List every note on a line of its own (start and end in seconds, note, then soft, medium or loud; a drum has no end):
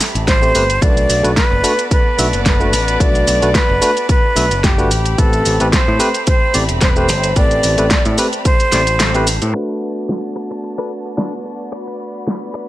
0.00 0.78 A3 medium
0.00 0.78 C4 medium
0.00 0.78 G4 medium
0.00 0.78 B5 medium
0.00 snare medium
0.00 open hi-hat loud
0.00 shaker medium
0.15 0.52 A1 medium
0.15 closed hi-hat soft
0.15 shaker soft
0.27 0.83 C5 loud
0.27 kick loud
0.27 snare loud
0.27 closed hi-hat medium
0.27 shaker soft
0.41 0.51 A3 medium
0.41 0.51 C4 medium
0.41 0.52 G4 medium
0.41 0.52 C5 medium
0.41 shaker soft
0.55 0.78 G1 medium
0.55 0.63 A3 medium
0.55 0.63 C4 medium
0.55 0.63 G4 medium
0.55 0.63 B4 medium
0.55 open hi-hat loud
0.55 shaker medium
0.70 closed hi-hat medium
0.70 shaker soft
0.81 1.05 B1 loud
0.81 1.20 A3 medium
0.81 4.87 B3 medium
0.81 1.20 D4 medium
0.81 1.21 F#4 medium
0.81 4.87 F#4 medium
0.81 4.87 A4 medium
0.81 1.21 B4 medium
0.81 1.36 D5 loud
0.81 4.87 D5 medium
0.81 kick loud
0.81 closed hi-hat medium
0.81 shaker soft
0.97 closed hi-hat soft
0.97 shaker soft
1.09 1.22 B1 loud
1.09 open hi-hat loud
1.09 shaker medium
1.23 1.35 B1 medium
1.23 1.30 A3 medium
1.23 1.30 D4 medium
1.23 1.30 F#4 medium
1.23 1.31 B4 medium
1.23 closed hi-hat soft
1.23 shaker soft
1.37 1.88 B4 loud
1.37 kick loud
1.37 snare loud
1.37 closed hi-hat medium
1.37 shaker soft
1.52 1.62 F#1 loud
1.63 1.71 A3 loud
1.63 1.71 D4 medium
1.63 1.72 F#4 medium
1.63 1.72 B4 loud
1.63 open hi-hat loud
1.63 shaker medium
1.79 closed hi-hat soft
1.79 shaker soft
1.91 2.42 B4 loud
1.91 kick loud
1.91 closed hi-hat medium
1.91 shaker soft
2.18 2.31 B1 medium
2.18 2.26 A3 medium
2.18 2.26 D4 medium
2.18 2.26 F#4 medium
2.18 2.26 E5 medium
2.18 open hi-hat loud
2.18 shaker medium
2.33 2.73 F#1 medium
2.33 closed hi-hat soft
2.33 shaker soft
2.46 3.02 B4 loud
2.46 kick loud
2.46 snare loud
2.46 closed hi-hat medium
2.46 shaker soft
2.60 2.71 A3 medium
2.60 2.71 D4 medium
2.60 2.71 F#4 medium
2.60 2.71 B4 medium
2.60 shaker soft
2.73 2.96 A1 medium
2.73 open hi-hat loud
2.73 shaker medium
2.88 closed hi-hat medium
2.88 shaker soft
3.00 3.23 B1 medium
3.00 3.39 A3 medium
3.00 3.39 D4 medium
3.00 3.39 F#4 medium
3.00 3.39 B4 medium
3.00 3.57 D5 loud
3.00 kick loud
3.00 closed hi-hat medium
3.00 shaker soft
3.15 closed hi-hat soft
3.15 shaker soft
3.27 3.40 B1 loud
3.27 open hi-hat loud
3.27 shaker medium
3.42 3.53 B1 medium
3.42 3.49 A3 medium
3.42 3.49 D4 medium
3.42 3.49 F#4 medium
3.42 3.49 B4 medium
3.42 closed hi-hat soft
3.42 shaker soft
3.55 4.09 B4 loud
3.55 kick loud
3.55 snare loud
3.55 closed hi-hat medium
3.55 shaker soft
3.70 3.80 F#1 loud
3.82 3.90 A3 loud
3.82 3.90 D4 medium
3.82 3.90 F#4 medium
3.82 3.90 B4 loud
3.82 open hi-hat loud
3.82 shaker medium
3.97 closed hi-hat soft
3.97 shaker soft
4.09 4.66 B4 loud
4.09 kick loud
4.09 closed hi-hat medium
4.09 shaker soft
4.36 4.49 B1 medium
4.36 4.44 A3 medium
4.36 4.44 D4 medium
4.36 4.44 F#4 medium
4.36 4.44 E5 medium
4.36 open hi-hat loud
4.36 shaker medium
4.51 4.91 F#1 loud
4.51 closed hi-hat medium
4.51 shaker soft
4.64 5.20 G4 medium
4.64 kick loud
4.64 snare loud
4.64 closed hi-hat medium
4.64 shaker soft
4.78 4.89 A3 medium
4.78 4.89 D4 medium
4.78 4.89 F#4 medium
4.78 4.89 B4 loud
4.78 shaker soft
4.91 5.14 A1 medium
4.91 9.51 A3 medium
4.91 9.51 C4 medium
4.91 9.51 G4 medium
4.91 9.51 B5 medium
4.91 open hi-hat medium
4.91 shaker medium
5.06 closed hi-hat medium
5.06 shaker soft
5.18 5.42 A1 medium
5.18 5.57 A3 medium
5.18 5.57 C4 medium
5.18 5.57 G4 medium
5.18 5.73 A4 loud
5.18 5.57 B4 medium
5.18 kick loud
5.18 closed hi-hat medium
5.18 shaker soft
5.33 closed hi-hat soft
5.33 shaker soft
5.45 5.58 A1 medium
5.45 open hi-hat loud
5.45 shaker medium
5.60 5.71 A1 medium
5.60 5.67 A3 medium
5.60 5.67 C4 medium
5.60 5.67 G4 medium
5.60 5.67 B4 loud
5.60 closed hi-hat medium
5.60 shaker soft
5.73 6.24 C5 loud
5.73 kick loud
5.73 snare loud
5.73 closed hi-hat medium
5.73 shaker soft
5.88 5.98 A2 loud
5.99 6.07 A3 loud
5.99 6.08 C4 medium
5.99 6.08 G4 medium
5.99 6.08 B4 loud
5.99 open hi-hat loud
5.99 shaker medium
6.14 closed hi-hat medium
6.14 shaker soft
6.27 6.58 C5 loud
6.27 kick loud
6.27 closed hi-hat medium
6.27 shaker soft
6.54 6.67 A1 medium
6.54 6.62 A3 medium
6.54 6.62 C4 medium
6.54 6.62 G4 medium
6.54 6.62 D5 medium
6.54 open hi-hat loud
6.54 shaker medium
6.69 7.09 E1 loud
6.69 closed hi-hat medium
6.69 shaker soft
6.81 6.91 C5 loud
6.81 kick loud
6.81 snare loud
6.81 closed hi-hat medium
6.81 shaker soft
6.89 6.98 B4 medium
6.96 7.07 A3 medium
6.96 7.07 C4 medium
6.96 7.07 G4 medium
6.96 7.08 B4 loud
6.96 7.36 C5 loud
6.96 shaker soft
7.09 7.32 G1 medium
7.09 open hi-hat loud
7.09 shaker medium
7.24 closed hi-hat medium
7.24 shaker soft
7.36 7.60 A1 loud
7.36 7.75 A3 medium
7.36 7.75 C4 medium
7.36 7.75 G4 medium
7.36 7.75 B4 medium
7.36 8.15 D5 loud
7.36 kick loud
7.36 closed hi-hat medium
7.36 shaker soft
7.51 closed hi-hat soft
7.51 shaker soft
7.63 7.76 A1 loud
7.63 open hi-hat loud
7.63 shaker medium
7.78 7.89 A1 medium
7.78 7.85 A3 medium
7.78 7.85 C4 medium
7.78 7.85 G4 medium
7.78 7.85 B4 medium
7.78 closed hi-hat medium
7.78 shaker soft
7.90 kick loud
7.90 snare loud
7.90 closed hi-hat medium
7.90 shaker soft
8.05 8.16 A2 loud
8.05 closed hi-hat soft
8.05 shaker soft
8.18 8.26 A3 loud
8.18 8.26 C4 medium
8.18 8.26 G4 medium
8.18 8.26 B4 loud
8.18 open hi-hat loud
8.18 shaker medium
8.33 closed hi-hat medium
8.33 shaker soft
8.45 9.23 C5 loud
8.45 kick loud
8.45 closed hi-hat medium
8.45 shaker soft
8.60 closed hi-hat soft
8.60 shaker soft
8.72 9.38 A1 medium
8.72 8.80 A3 medium
8.72 8.81 C4 medium
8.72 8.81 G4 medium
8.72 8.81 D5 medium
8.72 snare medium
8.72 open hi-hat loud
8.72 shaker medium
8.87 closed hi-hat medium
8.87 shaker soft
9.00 snare loud
9.00 closed hi-hat medium
9.00 shaker soft
9.14 9.25 A3 medium
9.14 9.25 C4 medium
9.14 9.26 G4 medium
9.14 9.26 B4 loud
9.14 closed hi-hat soft
9.14 shaker soft
9.27 open hi-hat loud
9.27 shaker medium
9.42 9.53 A2 medium
9.42 closed hi-hat medium
9.42 shaker soft
9.54 12.69 A3 medium
9.54 12.69 B3 medium
9.54 12.69 D4 medium
9.54 12.69 F#4 medium
9.54 12.69 B4 medium
9.54 12.69 D5 medium
9.54 11.70 A5 medium
9.54 muted clean electric guitar stroke loud
9.54 closed hi-hat medium
9.69 muted clean electric guitar stroke soft
9.81 shaker medium
10.08 muted clean electric guitar stroke soft
10.08 snare loud
10.08 closed hi-hat medium
10.36 muted clean electric guitar stroke medium
10.36 shaker medium
10.51 muted clean electric guitar stroke medium
10.51 closed hi-hat soft
10.63 muted clean electric guitar stroke soft
10.63 closed hi-hat medium
10.78 10.91 D4 loud
10.78 10.91 A4 medium
10.78 10.91 B4 loud
10.91 shaker medium
11.05 muted clean electric guitar stroke soft
11.05 closed hi-hat soft
11.17 11.33 D4 medium
11.17 11.33 A4 medium
11.17 11.33 B4 medium
11.17 snare loud
11.45 muted clean electric guitar stroke soft
11.45 shaker medium
11.60 closed hi-hat soft
11.60 shaker soft
11.72 12.69 B5 medium
11.72 muted clean electric guitar stroke loud
11.72 shaker soft
11.87 muted clean electric guitar stroke soft
11.87 closed hi-hat soft
12.00 shaker medium
12.15 closed hi-hat soft
12.15 shaker soft
12.27 muted clean electric guitar stroke soft
12.27 snare loud
12.27 closed hi-hat medium
12.27 shaker soft
12.42 shaker soft
12.54 muted clean electric guitar stroke medium
12.54 shaker medium